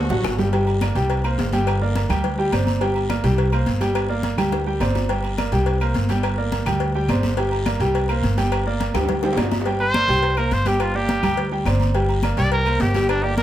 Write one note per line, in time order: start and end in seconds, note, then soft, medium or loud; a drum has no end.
0.00 0.35 D4 medium
0.00 0.35 F#4 medium
0.10 0.23 A1 medium
0.10 0.34 F#3 medium
0.10 0.34 F#4 medium
0.10 0.34 F#5 medium
0.10 high bongo soft
0.10 low conga medium
0.10 low timbale medium
0.24 0.90 G1 medium
0.24 high bongo medium
0.24 low bongo medium
0.24 short guiro medium
0.24 claves medium
0.38 0.50 G3 medium
0.38 0.50 G4 medium
0.38 0.51 G5 medium
0.38 high bongo soft
0.38 low conga medium
0.38 low timbale medium
0.38 short guiro medium
0.53 0.76 G3 medium
0.53 0.76 G4 medium
0.53 0.77 G5 medium
0.53 cowbell loud
0.53 high conga soft
0.53 low agogo medium
0.53 long guiro medium
0.67 high conga soft
0.67 low agogo medium
0.81 0.93 A#3 medium
0.81 0.93 A#4 medium
0.81 0.93 D5 medium
0.81 cowbell medium
0.81 high conga loud
0.81 low agogo loud
0.81 short guiro medium
0.81 claves medium
0.95 1.35 C2 medium
0.95 1.19 G3 medium
0.95 1.19 G4 medium
0.95 1.19 G5 medium
0.95 cowbell medium
0.95 high conga soft
0.95 short guiro medium
1.10 cowbell loud
1.10 high conga soft
1.10 low agogo medium
1.10 long guiro medium
1.24 1.48 A#3 medium
1.24 1.48 A#4 medium
1.24 1.48 C5 medium
1.24 high conga soft
1.24 low agogo loud
1.24 claves medium
1.38 2.04 G1 medium
1.38 cowbell medium
1.38 high conga medium
1.38 low timbale medium
1.38 short guiro medium
1.53 1.76 G3 medium
1.53 1.76 G4 medium
1.53 1.76 G5 medium
1.53 cowbell medium
1.53 high conga medium
1.53 low agogo medium
1.53 short guiro medium
1.67 cowbell loud
1.67 low agogo loud
1.67 long guiro medium
1.67 claves medium
1.81 2.05 A#3 medium
1.81 2.05 A#4 medium
1.81 2.05 D5 medium
1.81 high conga soft
1.95 cowbell medium
1.95 high conga medium
1.95 low agogo medium
1.95 short guiro medium
2.09 2.49 D2 medium
2.09 2.33 G3 medium
2.09 2.33 G4 medium
2.09 2.33 G5 medium
2.09 cowbell medium
2.09 high conga soft
2.09 low conga medium
2.09 low agogo loud
2.09 short guiro medium
2.09 claves medium
2.24 cowbell loud
2.24 high conga soft
2.24 low conga medium
2.24 long guiro medium
2.38 2.50 G3 medium
2.38 2.50 G4 medium
2.38 2.50 G5 medium
2.38 high conga soft
2.52 3.18 G1 medium
2.52 2.76 C4 medium
2.52 2.76 C5 medium
2.52 2.76 D5 medium
2.52 cowbell medium
2.52 high conga medium
2.52 low agogo loud
2.52 short guiro medium
2.52 claves medium
2.67 high conga medium
2.67 low agogo medium
2.67 short guiro medium
2.81 3.04 G3 medium
2.81 3.05 G4 medium
2.81 3.05 G5 medium
2.81 cowbell loud
2.81 high conga soft
2.81 low agogo medium
2.81 long guiro medium
2.96 high conga soft
2.96 low agogo medium
3.10 3.21 A#3 medium
3.10 3.22 A#4 medium
3.10 3.22 D5 medium
3.10 cowbell medium
3.10 high conga loud
3.10 low agogo loud
3.10 short guiro medium
3.10 claves medium
3.24 3.64 C2 loud
3.24 3.47 G3 medium
3.24 3.47 G4 medium
3.24 3.47 G5 medium
3.24 cowbell medium
3.24 high conga soft
3.24 short guiro medium
3.38 cowbell loud
3.38 high conga soft
3.38 low agogo medium
3.52 3.76 A#3 medium
3.52 3.76 A#4 medium
3.52 3.76 C5 medium
3.52 high conga soft
3.52 low agogo loud
3.52 claves medium
3.66 4.33 G1 medium
3.66 cowbell medium
3.66 high conga medium
3.66 short guiro medium
3.81 4.04 G3 medium
3.81 4.04 G4 medium
3.81 4.05 G5 loud
3.81 cowbell medium
3.81 high conga medium
3.81 low agogo medium
3.81 short guiro medium
3.95 cowbell loud
3.95 high conga soft
3.95 low agogo loud
3.95 long guiro medium
3.95 claves medium
4.09 4.33 A#3 medium
4.09 4.33 A#4 medium
4.09 4.33 D5 medium
4.09 high conga soft
4.23 cowbell medium
4.23 high conga loud
4.23 low agogo medium
4.23 short guiro medium
4.37 4.78 D2 medium
4.37 4.61 G3 medium
4.37 4.61 G4 medium
4.37 4.62 G5 medium
4.37 cowbell medium
4.37 high conga soft
4.37 low conga medium
4.37 low agogo loud
4.37 short guiro medium
4.37 claves medium
4.52 cowbell loud
4.52 high bongo medium
4.52 high conga soft
4.66 4.78 G3 medium
4.66 4.78 G4 medium
4.66 4.79 G5 medium
4.66 high conga soft
4.80 5.46 G1 medium
4.80 5.04 C4 medium
4.80 5.04 C5 medium
4.80 5.04 D5 medium
4.80 cowbell medium
4.80 high conga medium
4.80 low timbale medium
4.80 low agogo loud
4.80 short guiro medium
4.80 claves medium
4.95 low bongo medium
4.95 high conga medium
4.95 low agogo medium
4.95 short guiro medium
5.09 5.33 G3 medium
5.09 5.33 G4 medium
5.09 5.33 G5 medium
5.09 cowbell loud
5.09 high conga soft
5.09 low agogo medium
5.09 long guiro medium
5.24 high conga soft
5.24 low agogo medium
5.38 5.50 A#3 medium
5.38 5.50 A#4 medium
5.38 5.50 D5 medium
5.38 cowbell medium
5.38 high conga loud
5.38 low agogo loud
5.38 short guiro medium
5.38 claves medium
5.52 5.92 C2 medium
5.52 5.76 G3 medium
5.52 5.76 G4 medium
5.52 5.76 G5 medium
5.52 cowbell medium
5.52 high conga soft
5.52 short guiro medium
5.66 cowbell loud
5.66 high conga soft
5.66 low agogo medium
5.66 long guiro medium
5.81 6.04 A#3 medium
5.81 6.05 A#4 medium
5.81 6.05 C5 medium
5.81 high conga soft
5.81 low agogo loud
5.81 claves medium
5.94 6.61 G1 medium
5.94 cowbell medium
5.94 high conga medium
5.94 short guiro medium
6.09 6.33 G3 medium
6.09 6.33 G4 medium
6.09 6.33 G5 medium
6.09 cowbell medium
6.09 high conga medium
6.09 low agogo medium
6.09 short guiro medium
6.23 cowbell loud
6.23 low agogo loud
6.23 long guiro medium
6.23 claves medium
6.38 6.61 A#3 medium
6.38 6.61 A#4 medium
6.38 6.61 D5 medium
6.38 high conga soft
6.52 cowbell medium
6.52 high conga loud
6.52 low agogo medium
6.52 short guiro medium
6.66 7.06 D2 medium
6.66 6.90 G3 medium
6.66 6.90 G4 medium
6.66 6.90 G5 medium
6.66 cowbell medium
6.66 high conga soft
6.66 low conga medium
6.66 low agogo loud
6.66 short guiro medium
6.66 claves medium
6.80 cowbell loud
6.80 high conga soft
6.80 long guiro medium
6.95 7.07 G3 medium
6.95 7.07 G4 medium
6.95 7.07 G5 medium
6.95 high conga soft
7.08 7.75 G1 medium
7.08 7.33 C4 medium
7.08 7.33 C5 medium
7.08 7.33 D5 medium
7.08 cowbell medium
7.08 high conga medium
7.08 low timbale medium
7.08 low agogo loud
7.08 short guiro medium
7.08 claves medium
7.23 high conga medium
7.23 low agogo medium
7.23 short guiro medium
7.37 7.61 G3 medium
7.37 7.62 G4 medium
7.37 7.62 G5 medium
7.37 cowbell loud
7.37 high conga soft
7.37 low agogo medium
7.37 long guiro medium
7.51 high conga soft
7.51 low agogo medium
7.66 7.78 A#3 medium
7.66 7.78 A#4 medium
7.66 7.78 D5 medium
7.66 cowbell medium
7.66 high conga loud
7.66 low agogo loud
7.66 short guiro medium
7.66 claves medium
7.79 8.20 C2 loud
7.79 8.04 G3 medium
7.79 8.04 G4 medium
7.79 8.04 G5 medium
7.79 cowbell medium
7.79 high conga soft
7.79 short guiro medium
7.95 cowbell loud
7.95 high conga soft
7.95 low agogo medium
7.95 long guiro medium
8.09 8.32 A#3 medium
8.09 8.33 A#4 medium
8.09 8.33 C5 medium
8.09 high conga soft
8.09 low agogo loud
8.09 claves medium
8.22 8.89 G1 medium
8.22 cowbell medium
8.22 high conga medium
8.22 short guiro medium
8.38 8.61 G3 medium
8.38 8.61 G4 loud
8.38 8.61 G5 loud
8.38 cowbell medium
8.38 high conga medium
8.38 low agogo medium
8.38 short guiro medium
8.52 cowbell loud
8.52 low agogo loud
8.52 long guiro medium
8.52 claves medium
8.66 8.90 A#3 medium
8.66 8.90 A#4 medium
8.66 8.90 D5 medium
8.66 high conga soft
8.80 cowbell medium
8.80 high conga medium
8.80 low agogo medium
8.80 short guiro medium
8.94 9.34 D2 medium
8.94 9.18 G3 medium
8.94 9.18 G4 medium
8.94 9.19 G5 medium
8.94 cowbell medium
8.94 high bongo medium
8.94 high conga soft
8.94 low conga medium
8.94 high timbale loud
8.94 low agogo loud
8.94 short guiro medium
8.94 claves medium
9.05 high timbale medium
9.09 cowbell loud
9.09 high bongo medium
9.09 high conga soft
9.09 low conga medium
9.09 long guiro medium
9.23 9.35 G3 medium
9.23 9.35 G4 medium
9.23 9.36 G5 medium
9.23 high bongo medium
9.23 high conga soft
9.23 high timbale loud
9.33 10.03 G1 medium
9.33 low timbale loud
9.37 9.61 C4 medium
9.37 9.61 C5 medium
9.37 9.62 D5 medium
9.37 cowbell medium
9.37 low bongo loud
9.37 high conga medium
9.37 low agogo loud
9.37 short guiro medium
9.37 claves medium
9.43 low timbale medium
9.51 low bongo loud
9.51 high conga medium
9.51 low agogo medium
9.51 short guiro medium
9.61 low timbale medium
9.66 9.90 G3 medium
9.66 9.90 G4 medium
9.66 9.90 G5 medium
9.66 cowbell loud
9.66 high conga soft
9.66 low agogo medium
9.66 long guiro medium
9.80 10.39 C5 loud
9.80 high conga soft
9.80 low agogo medium
9.94 10.06 A#3 medium
9.94 10.07 A#4 medium
9.94 10.07 D5 medium
9.94 cowbell medium
9.94 high conga loud
9.94 low agogo loud
9.94 short guiro medium
9.94 claves medium
10.08 10.48 C2 medium
10.08 10.32 G3 medium
10.08 10.32 G4 medium
10.08 10.33 G5 medium
10.08 cowbell medium
10.08 high conga soft
10.08 short guiro medium
10.23 cowbell loud
10.23 high conga soft
10.23 low agogo medium
10.37 10.61 A#3 medium
10.37 10.61 A#4 medium
10.37 10.55 A#4 medium
10.37 10.61 C5 medium
10.37 high conga soft
10.37 low agogo loud
10.37 claves medium
10.51 11.18 G1 medium
10.51 10.69 C5 medium
10.51 cowbell medium
10.51 high conga loud
10.51 short guiro medium
10.65 10.90 G3 medium
10.65 10.90 G4 medium
10.65 10.83 G4 medium
10.65 10.90 G5 medium
10.65 cowbell medium
10.65 high conga medium
10.65 low agogo medium
10.65 short guiro medium
10.80 10.97 F4 medium
10.80 cowbell loud
10.80 low agogo loud
10.80 long guiro medium
10.80 claves medium
10.94 11.18 A#3 medium
10.94 11.51 G4 loud
10.94 11.18 A#4 medium
10.94 11.18 D5 medium
10.94 high conga soft
11.09 cowbell medium
11.09 high conga loud
11.09 low agogo medium
11.09 short guiro medium
11.23 11.63 D2 medium
11.23 11.47 G3 medium
11.23 11.47 G4 medium
11.23 11.47 G5 medium
11.23 cowbell medium
11.23 high conga soft
11.23 low conga medium
11.23 low agogo loud
11.23 short guiro medium
11.23 claves medium
11.37 cowbell loud
11.37 high conga soft
11.37 low conga medium
11.51 11.64 G3 medium
11.51 11.64 G4 medium
11.51 11.64 G5 medium
11.51 high conga soft
11.65 12.32 G1 medium
11.65 11.90 C4 medium
11.65 11.90 C5 medium
11.65 11.90 D5 medium
11.65 cowbell medium
11.65 high conga medium
11.65 low agogo loud
11.65 short guiro medium
11.65 claves medium
11.80 high conga medium
11.80 low agogo medium
11.80 short guiro medium
11.95 12.18 G3 medium
11.95 12.18 G4 medium
11.95 12.18 G5 medium
11.95 cowbell loud
11.95 high conga soft
11.95 low agogo medium
11.95 long guiro medium
12.08 high conga soft
12.08 low agogo medium
12.23 12.35 A#3 medium
12.23 12.35 A#4 medium
12.23 12.35 D5 medium
12.23 cowbell medium
12.23 high conga loud
12.23 low agogo loud
12.23 short guiro medium
12.23 claves medium
12.37 12.77 C2 medium
12.37 12.61 G3 medium
12.37 12.61 G4 loud
12.37 12.52 D5 loud
12.37 12.61 G5 medium
12.37 cowbell medium
12.37 short guiro medium
12.51 12.83 A#4 medium
12.51 cowbell loud
12.51 high conga soft
12.51 low agogo medium
12.66 12.89 A#3 medium
12.66 12.90 A#4 medium
12.66 12.90 C5 medium
12.66 high conga soft
12.66 low agogo loud
12.66 claves medium
12.80 13.43 G1 loud
12.80 13.08 G4 medium
12.80 cowbell medium
12.80 high conga medium
12.80 low timbale medium
12.80 short guiro medium
12.94 13.18 G3 medium
12.94 13.18 G4 loud
12.94 13.18 G5 medium
12.94 cowbell medium
12.94 high conga medium
12.94 low agogo medium
12.94 short guiro medium
13.08 13.25 D4 medium
13.08 cowbell loud
13.08 high conga soft
13.08 low agogo loud
13.08 claves medium
13.23 13.43 A#3 medium
13.23 13.37 G4 medium
13.23 13.43 A#4 medium
13.23 13.43 D5 medium
13.23 high conga soft
13.38 13.43 A#4 loud
13.38 cowbell medium
13.38 high conga loud
13.38 low agogo medium
13.38 short guiro medium